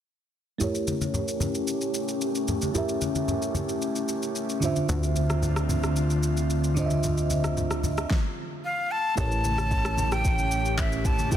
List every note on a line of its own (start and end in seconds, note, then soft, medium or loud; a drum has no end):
0.58 2.70 A3 medium
0.58 4.58 A3 medium
0.58 4.58 C#4 medium
0.58 2.70 E4 medium
0.58 4.58 G4 medium
0.58 2.71 G4 medium
0.58 2.72 A#4 medium
0.58 low conga medium
0.58 shaker medium
0.63 2.72 C#5 medium
0.75 shaker medium
0.87 high conga medium
0.87 shaker medium
1.01 high conga medium
1.01 shaker medium
1.14 low conga medium
1.14 shaker medium
1.28 shaker soft
1.40 high conga medium
1.40 low conga medium
1.40 shaker medium
1.55 shaker medium
1.68 shaker medium
1.81 shaker soft
1.94 shaker medium
2.08 shaker soft
2.21 shaker medium
2.35 shaker medium
2.48 low conga medium
2.48 shaker medium
2.62 high conga medium
2.62 shaker medium
2.73 4.57 A3 medium
2.73 4.58 E4 medium
2.73 4.59 G4 medium
2.73 4.59 A#4 medium
2.73 low conga medium
2.73 shaker medium
2.78 4.60 E5 medium
2.89 shaker medium
3.01 high conga medium
3.01 shaker medium
3.15 high conga medium
3.15 shaker medium
3.28 low conga medium
3.28 shaker medium
3.42 shaker soft
3.55 high conga medium
3.55 low conga medium
3.55 shaker medium
3.69 shaker medium
3.82 shaker medium
3.96 shaker soft
4.08 shaker medium
4.23 shaker medium
4.36 shaker medium
4.49 shaker medium
4.60 6.71 D3 medium
4.60 8.07 D3 medium
4.60 8.07 C4 medium
4.60 6.72 D4 medium
4.60 8.07 F4 medium
4.60 6.73 F4 medium
4.60 6.73 C5 medium
4.60 low conga medium
4.60 shaker medium
4.65 6.74 E5 medium
4.76 high conga medium
4.76 shaker medium
4.89 8.06 D2 medium
4.89 low conga medium
4.89 shaker medium
5.03 shaker medium
5.16 high conga medium
5.16 shaker medium
5.30 cross-stick medium
5.30 high conga medium
5.30 shaker medium
5.42 low conga medium
5.42 shaker medium
5.56 cross-stick medium
5.56 shaker soft
5.69 high conga medium
5.69 low conga medium
5.69 shaker medium
5.83 cross-stick medium
5.83 shaker medium
5.96 shaker medium
6.10 shaker medium
6.23 shaker medium
6.37 shaker medium
6.50 shaker medium
6.64 shaker medium
6.74 8.07 D3 medium
6.74 8.07 D4 medium
6.74 8.08 F4 medium
6.74 8.09 C5 medium
6.74 low conga medium
6.74 shaker medium
6.80 6.85 D#5 medium
6.86 8.13 E5 medium
6.90 high conga medium
6.90 shaker medium
7.03 low conga medium
7.03 shaker medium
7.17 shaker medium
7.30 high conga medium
7.30 shaker medium
7.44 cross-stick medium
7.44 high conga medium
7.44 shaker medium
7.57 low conga medium
7.57 shaker medium
7.71 cross-stick medium
7.71 shaker soft
7.83 high conga medium
7.83 low conga medium
7.83 shaker medium
7.98 cross-stick medium
7.98 shaker medium
8.10 kick loud
8.10 snare medium
8.65 8.93 F5 medium
8.91 9.17 A5 loud
9.15 11.37 A1 medium
9.15 11.27 A3 medium
9.15 11.37 A3 medium
9.15 11.37 C#4 medium
9.15 11.27 E4 medium
9.15 11.37 G4 medium
9.15 11.28 G4 medium
9.15 11.29 A#4 medium
9.15 10.14 A5 loud
9.15 kick loud
9.15 low conga medium
9.15 shaker medium
9.21 11.29 C#5 medium
9.32 shaker medium
9.44 high conga medium
9.44 shaker medium
9.58 cross-stick medium
9.58 high conga medium
9.58 shaker medium
9.71 kick loud
9.71 low conga medium
9.71 shaker medium
9.85 cross-stick loud
9.85 shaker medium
9.97 high conga medium
9.97 low conga medium
9.97 shaker loud
10.12 10.78 G5 loud
10.12 cross-stick medium
10.12 shaker medium
10.25 kick loud
10.25 shaker medium
10.38 high conga soft
10.38 shaker medium
10.51 shaker medium
10.65 shaker soft
10.78 11.07 E5 medium
10.78 kick medium
10.78 clap medium
10.78 shaker medium
10.92 shaker medium
11.05 11.32 A5 loud
11.05 kick medium
11.05 low conga medium
11.05 shaker medium
11.19 high conga medium
11.19 shaker medium
11.30 11.37 A3 medium
11.30 11.37 E4 medium
11.30 11.37 G4 medium
11.30 11.37 A#4 medium
11.30 11.37 G5 loud
11.30 kick loud
11.30 low conga medium
11.30 shaker medium